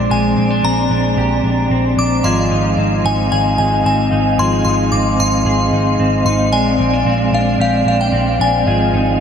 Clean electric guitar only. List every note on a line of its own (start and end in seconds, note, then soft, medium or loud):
0.00 0.10 G#3 medium
0.00 0.37 C4 medium
0.00 0.37 D4 medium
0.10 2.24 G#3 medium
0.37 0.50 C4 medium
0.50 0.90 D4 soft
0.65 1.71 C4 medium
0.91 1.43 D4 medium
1.18 2.24 G4 medium
1.44 1.97 D4 soft
1.71 2.78 C4 soft
1.98 2.30 D4 soft
2.25 4.38 F3 medium
2.25 3.31 G#4 medium
2.51 3.03 D#4 medium
2.78 3.85 C4 soft
3.04 3.57 D#4 medium
3.32 4.39 G#4 medium
3.59 4.10 D#4 soft
3.85 4.92 C4 medium
4.12 4.64 D#4 medium
4.39 6.52 F3 medium
4.39 5.46 G#4 medium
4.65 5.18 D#4 medium
4.92 5.99 C4 medium
5.19 5.72 D#4 medium
5.46 6.96 G#4 medium
5.73 6.25 D#4 soft
5.99 6.80 C4 medium
6.27 6.58 D#4 medium
6.53 8.66 G#3 medium
6.80 6.93 C4 soft
6.93 7.32 D4 soft
7.06 8.13 C4 medium
7.34 7.85 D4 medium
7.60 8.67 G4 medium
7.87 8.39 D4 soft
8.13 9.20 C4 medium
8.40 8.72 D4 medium
8.67 9.20 F3 medium
8.67 9.20 G#4 medium
8.94 9.20 D#4 soft